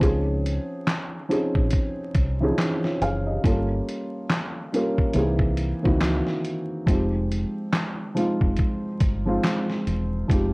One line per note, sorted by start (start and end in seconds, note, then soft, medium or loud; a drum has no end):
0.00 0.58 C#2 loud
0.00 0.80 F3 medium
0.00 0.81 C4 medium
0.00 0.81 C#4 medium
0.00 0.81 D#4 medium
0.00 0.82 G#4 medium
0.00 kick loud
0.00 closed hi-hat medium
0.46 closed hi-hat medium
0.87 snare loud
0.87 clap medium
0.87 closed hi-hat medium
1.29 1.98 F3 medium
1.29 1.99 C4 medium
1.29 1.99 C#4 medium
1.29 2.00 D#4 medium
1.29 2.00 G#4 medium
1.29 closed hi-hat medium
1.55 1.70 A#1 medium
1.55 kick medium
1.71 kick medium
1.71 closed hi-hat medium
2.14 2.51 C2 medium
2.14 kick medium
2.14 closed hi-hat medium
2.40 2.46 E3 medium
2.40 3.03 C4 medium
2.40 3.03 C#4 medium
2.40 3.04 D#4 medium
2.40 2.60 G#4 medium
2.47 3.06 F3 medium
2.58 snare medium
2.58 clap medium
2.58 closed hi-hat medium
2.83 3.01 F4 medium
2.83 3.00 C#5 medium
2.83 snare soft
3.01 3.37 F#1 medium
3.01 3.26 G#4 medium
3.01 3.25 F5 medium
3.01 closed hi-hat medium
3.26 3.67 G4 soft
3.26 3.67 D#5 medium
3.42 3.80 G1 loud
3.42 4.23 G3 medium
3.42 4.24 A#3 medium
3.42 4.24 C#4 medium
3.42 4.24 F4 medium
3.42 4.25 A4 medium
3.42 kick medium
3.42 closed hi-hat medium
3.89 closed hi-hat medium
4.30 snare loud
4.30 clap medium
4.30 closed hi-hat medium
4.72 5.15 G3 medium
4.72 5.13 A#3 medium
4.72 5.16 C#4 medium
4.72 5.17 F4 medium
4.72 5.17 A#4 medium
4.72 closed hi-hat medium
4.98 kick medium
5.13 5.72 C2 loud
5.13 5.68 E3 loud
5.13 5.68 A#3 medium
5.13 5.68 C4 medium
5.13 5.69 D#4 medium
5.13 5.69 G#4 medium
5.13 closed hi-hat medium
5.39 kick medium
5.57 closed hi-hat medium
5.82 6.20 C#2 medium
5.82 5.88 D#3 medium
5.82 6.45 A#3 medium
5.82 6.46 C4 medium
5.82 6.46 D#4 medium
5.82 6.46 F#4 medium
5.82 kick loud
5.88 6.48 E3 medium
6.01 snare loud
6.01 clap medium
6.01 closed hi-hat medium
6.27 snare soft
6.45 closed hi-hat medium
6.86 7.44 F1 loud
6.86 7.66 F3 medium
6.86 7.67 G#3 medium
6.86 7.67 C4 medium
6.86 7.68 D#4 medium
6.86 7.68 G4 medium
6.86 kick medium
6.86 closed hi-hat medium
7.32 closed hi-hat medium
7.73 snare loud
7.73 clap medium
7.73 closed hi-hat medium
8.15 8.84 F3 medium
8.15 8.85 G#3 medium
8.15 8.85 C4 medium
8.15 8.85 D#4 medium
8.15 8.86 F4 medium
8.15 closed hi-hat medium
8.41 8.56 F1 medium
8.41 kick medium
8.57 kick medium
8.57 closed hi-hat medium
9.00 9.37 G1 medium
9.00 kick loud
9.00 closed hi-hat medium
9.26 9.88 F3 medium
9.26 9.89 G#3 medium
9.26 9.89 C4 medium
9.26 9.89 D#4 medium
9.26 9.90 F4 medium
9.44 snare loud
9.44 clap medium
9.44 closed hi-hat medium
9.70 snare soft
9.87 10.23 E1 medium
9.87 closed hi-hat medium
10.28 10.54 F1 medium
10.28 10.54 F3 medium
10.28 10.54 G#3 medium
10.28 10.54 C4 medium
10.28 10.54 D#4 medium
10.28 10.54 G4 medium
10.28 kick medium
10.28 closed hi-hat medium